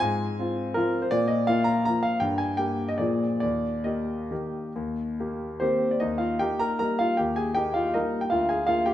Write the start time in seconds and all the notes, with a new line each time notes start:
0.00 G#2 G#5
0.39 C4 F4
0.74 F3 C4 F4 A#4
1.02 C5
1.11 A#2 D5
1.28 D#5
1.47 A#3 F4 F5
1.64 A#5
1.85 F3 A#3 F4 A#5
2.03 F5
2.20 G2 G5
2.38 G#5
2.57 A#3 G4 G5
2.88 D#5
2.98 A#2 F3 A#3 G#4 D5
3.40 D#2 D5
3.84 A#3 G4 D#5
4.31 D#3 A#3 G4
4.76 D#2
5.20 A#3 G4
5.60 D#3 A#3 C4 G4 C5
5.91 D5
6.00 D#2 D#4 D#5
6.18 F4 F5
6.39 A#3 D#4 G4 G5
6.59 A#4 A#5
6.79 G3 A#3 D#4 A#4 A#5
6.99 F4 F5
7.17 D#2 G4 G5
7.36 G#4 G#5
7.55 A#3 D#4 G4 G5
7.74 F4 F5
7.94 G3 A#3 D#4 A#4 D#5
8.21 G5
8.30 D2 F4 F5
8.49 G#4 G#5
8.67 A#3 F4 F5
8.86 G4 G5